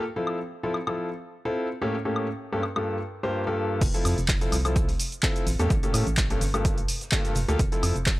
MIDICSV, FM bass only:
0, 0, Header, 1, 2, 480
1, 0, Start_track
1, 0, Key_signature, -1, "major"
1, 0, Tempo, 472441
1, 36, Time_signature, 4, 2, 24, 8
1, 8329, End_track
2, 0, Start_track
2, 0, Title_t, "FM bass"
2, 0, Program_c, 0, 39
2, 3875, Note_on_c, 0, 29, 98
2, 3972, Note_off_c, 0, 29, 0
2, 4116, Note_on_c, 0, 41, 103
2, 4212, Note_off_c, 0, 41, 0
2, 4246, Note_on_c, 0, 29, 85
2, 4550, Note_off_c, 0, 29, 0
2, 4596, Note_on_c, 0, 36, 82
2, 5030, Note_off_c, 0, 36, 0
2, 5555, Note_on_c, 0, 33, 84
2, 5652, Note_off_c, 0, 33, 0
2, 5685, Note_on_c, 0, 40, 86
2, 5767, Note_off_c, 0, 40, 0
2, 5795, Note_on_c, 0, 33, 96
2, 5892, Note_off_c, 0, 33, 0
2, 6035, Note_on_c, 0, 45, 103
2, 6131, Note_off_c, 0, 45, 0
2, 6164, Note_on_c, 0, 33, 85
2, 6469, Note_off_c, 0, 33, 0
2, 6515, Note_on_c, 0, 31, 83
2, 6950, Note_off_c, 0, 31, 0
2, 7475, Note_on_c, 0, 29, 88
2, 7572, Note_off_c, 0, 29, 0
2, 7605, Note_on_c, 0, 38, 86
2, 7687, Note_off_c, 0, 38, 0
2, 7715, Note_on_c, 0, 29, 96
2, 7812, Note_off_c, 0, 29, 0
2, 7955, Note_on_c, 0, 41, 106
2, 8051, Note_off_c, 0, 41, 0
2, 8085, Note_on_c, 0, 29, 80
2, 8329, Note_off_c, 0, 29, 0
2, 8329, End_track
0, 0, End_of_file